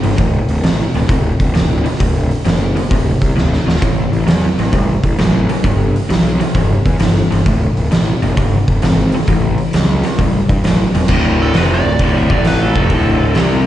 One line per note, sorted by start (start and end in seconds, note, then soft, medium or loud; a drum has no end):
0.03 0.13 G1 medium
0.03 0.17 G2 medium
0.03 0.17 E3 medium
0.03 open hi-hat medium
0.13 snare soft
0.18 0.38 D1 medium
0.18 0.60 D2 medium
0.18 0.61 A2 medium
0.18 kick loud
0.18 open hi-hat medium
0.49 0.58 D1 medium
0.49 open hi-hat soft
0.64 0.83 A1 medium
0.64 0.91 D2 medium
0.64 0.92 B2 medium
0.64 snare loud
0.64 open hi-hat medium
0.94 1.04 D1 medium
0.94 1.07 D2 medium
0.94 1.08 B2 medium
0.94 snare soft
0.94 open hi-hat soft
1.08 1.29 D1 medium
1.08 1.51 D2 medium
1.08 1.52 C3 medium
1.08 kick loud
1.08 open hi-hat medium
1.40 1.50 D1 medium
1.40 kick medium
1.40 open hi-hat soft
1.54 1.84 D1 medium
1.54 1.82 D2 medium
1.54 1.82 B2 medium
1.54 snare loud
1.54 open hi-hat medium
1.84 1.98 D2 medium
1.84 1.98 B2 medium
1.84 open hi-hat medium
1.95 snare soft
2.00 2.29 D1 medium
2.00 2.42 D2 medium
2.00 2.42 A2 medium
2.00 kick loud
2.00 open hi-hat medium
2.31 open hi-hat soft
2.45 2.75 F#1 medium
2.45 2.73 D2 medium
2.45 2.73 B2 medium
2.45 snare loud
2.45 open hi-hat medium
2.76 2.89 D2 medium
2.76 2.90 B2 medium
2.76 open hi-hat soft
2.91 3.11 D1 medium
2.91 3.33 D2 medium
2.91 3.34 C3 medium
2.91 kick loud
2.91 open hi-hat medium
3.21 3.31 C2 medium
3.21 kick medium
3.21 open hi-hat medium
3.36 3.56 D1 medium
3.36 3.64 D2 medium
3.36 3.64 B2 medium
3.36 snare medium
3.53 snare medium
3.67 3.77 D1 medium
3.67 3.80 D2 medium
3.67 3.80 B2 medium
3.67 snare medium
3.76 snare medium
3.82 4.02 A1 medium
3.82 4.24 A2 medium
3.82 4.25 E3 medium
3.82 kick loud
3.82 open hi-hat medium
4.12 4.21 A1 medium
4.12 open hi-hat soft
4.27 4.47 E2 medium
4.27 4.55 A2 medium
4.27 4.55 F#3 medium
4.27 snare loud
4.27 open hi-hat medium
4.58 4.68 A1 medium
4.58 4.71 A2 medium
4.58 4.72 F#3 medium
4.58 snare soft
4.58 open hi-hat soft
4.72 4.93 A1 medium
4.72 5.15 A2 medium
4.72 5.16 G3 medium
4.72 kick loud
4.72 open hi-hat medium
5.03 5.13 A1 medium
5.03 kick medium
5.03 open hi-hat soft
5.19 5.47 A1 medium
5.19 5.46 A2 medium
5.19 5.46 F#3 medium
5.19 snare loud
5.19 open hi-hat medium
5.49 5.63 A2 medium
5.49 5.63 F#3 medium
5.49 open hi-hat medium
5.64 5.93 G1 medium
5.64 6.07 G2 medium
5.64 6.07 D3 medium
5.64 kick loud
5.64 open hi-hat medium
5.96 open hi-hat soft
6.09 6.39 B1 medium
6.09 6.37 G2 medium
6.09 6.37 E3 medium
6.09 snare loud
6.09 open hi-hat medium
6.39 6.53 G2 medium
6.39 6.53 E3 medium
6.39 open hi-hat medium
6.55 6.75 G1 medium
6.55 6.97 G2 medium
6.55 6.97 F3 medium
6.55 kick loud
6.55 open hi-hat medium
6.86 6.95 E2 medium
6.86 kick medium
6.86 open hi-hat medium
7.00 7.20 G1 medium
7.00 7.28 G2 medium
7.00 7.28 E3 medium
7.00 snare loud
7.00 open hi-hat medium
7.31 7.41 G1 medium
7.31 7.44 G2 medium
7.31 7.44 E3 medium
7.31 open hi-hat medium
7.46 7.66 D1 medium
7.46 7.88 D2 medium
7.46 7.88 A2 medium
7.46 kick loud
7.46 open hi-hat medium
7.77 7.87 D1 medium
7.77 open hi-hat soft
7.91 8.11 A1 medium
7.91 8.19 D2 medium
7.91 8.19 B2 medium
7.91 snare loud
7.91 open hi-hat medium
8.22 8.31 F#1 medium
8.22 8.35 D2 medium
8.22 8.35 B2 medium
8.22 open hi-hat soft
8.37 8.57 G1 medium
8.37 8.79 G2 medium
8.37 8.80 D3 medium
8.37 kick loud
8.37 open hi-hat medium
8.68 8.77 G1 medium
8.68 kick medium
8.68 open hi-hat soft
8.82 9.12 G#1 medium
8.82 9.10 G2 medium
8.82 9.10 E3 medium
8.82 snare loud
8.82 open hi-hat medium
9.12 9.27 G2 medium
9.12 9.27 E3 medium
9.12 open hi-hat medium
9.22 snare soft
9.27 9.57 A1 medium
9.27 9.70 A2 medium
9.27 9.71 E3 medium
9.27 kick medium
9.27 open hi-hat medium
9.58 open hi-hat soft
9.73 10.02 C#2 medium
9.73 10.01 A2 medium
9.73 10.01 F#3 medium
9.73 snare loud
9.73 open hi-hat medium
10.03 10.17 A2 medium
10.03 10.17 F#3 medium
10.03 snare soft
10.03 open hi-hat soft
10.19 10.38 A1 medium
10.19 10.61 A2 medium
10.19 10.61 G3 medium
10.19 kick loud
10.19 open hi-hat medium
10.49 10.59 G2 medium
10.49 kick medium
10.49 open hi-hat soft
10.64 10.83 A1 medium
10.64 10.92 A2 medium
10.64 10.92 F#3 medium
10.64 snare loud
10.64 open hi-hat medium
10.95 11.04 E1 medium
10.95 11.08 A2 medium
10.95 11.08 F#3 medium
10.95 open hi-hat medium
11.03 snare soft
11.08 11.52 D1 medium
11.08 11.54 D2 medium
11.08 11.54 A2 loud
11.08 11.55 D3 loud
11.08 kick medium
11.08 crash loud
11.42 11.56 A4 medium
11.54 11.83 F1 medium
11.54 11.84 F2 medium
11.54 11.85 C3 medium
11.54 11.85 F3 medium
11.54 11.70 B4 medium
11.54 snare loud
11.54 open hi-hat soft
11.74 12.16 D5 medium
11.84 11.98 D1 medium
11.84 11.97 D2 medium
11.84 11.97 A2 medium
11.99 12.28 D1 medium
11.99 12.29 D2 loud
11.99 12.29 A2 medium
11.99 12.30 D3 loud
11.99 kick loud
11.99 open hi-hat medium
12.18 12.31 E5 medium
12.30 12.73 A1 medium
12.30 12.75 A2 medium
12.30 12.75 E3 medium
12.30 12.76 A3 medium
12.30 12.46 D5 medium
12.30 kick loud
12.45 12.62 B4 medium
12.45 snare loud
12.45 open hi-hat medium
12.62 13.49 A4 medium
12.76 12.90 F1 medium
12.76 12.90 F2 medium
12.76 12.90 C3 medium
12.76 12.91 F3 medium
12.76 kick loud
12.90 13.33 D1 medium
12.90 13.35 D2 medium
12.90 13.36 A2 medium
12.90 13.36 D3 medium
12.90 kick loud
12.90 open hi-hat medium
13.35 13.64 C2 medium
13.35 13.66 C3 medium
13.35 13.66 G3 medium
13.35 13.66 C4 medium
13.35 snare loud
13.35 open hi-hat medium